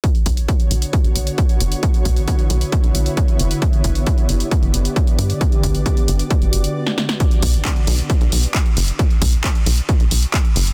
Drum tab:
HH |xxxxxxxxxxxxxxxx|xxxxxxxxxxxxxxxx|xxxxxxxxxxxxxxxx|xxxxxxxxxxxx----|
CP |----------------|----------------|----------------|----------------|
SD |----------------|----------------|----------------|-------------ooo|
BD |o-o-o---o---o---|o-o-o---o---o---|o-o-o---o---o---|o-o-o---o-------|

HH |xxoxxxoxxxoxxxox|xxoxxxoxxxoxxxox|
CP |----x-------x---|----x-------x---|
SD |----------------|----------------|
BD |o-o-o---o---o---|o-o-o---o---o---|